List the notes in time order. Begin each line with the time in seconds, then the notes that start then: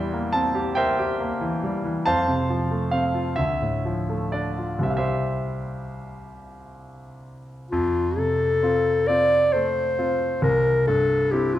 Already playing: E2 E3 G3 E5 G5 C6
0.13 A#3
0.33 C4 A5
0.55 G4
0.75 A#4 C5 E5 G5
0.99 G4
1.20 A#3
1.41 E3
1.63 G3
1.85 E3
2.06 F2 C5 F5 A5
2.28 C3
2.50 F3
2.71 A3
2.91 C4 F5
3.15 F4
3.36 D2 E5
3.62 A2
3.85 F3
4.10 A3
4.32 D4 D5
4.58 F4
4.79 C2 G3 C4 G4 E5
4.90 F5
4.97 G4 C5 E5
7.71 F2 F4
8.17 C3 A4
8.63 C4 F4
9.07 C4 F4 D5
9.53 A3 C5
9.99 C4 F4
10.42 C2 A#4
10.87 G2 A4
11.31 C4 E4 G4
11.54 F4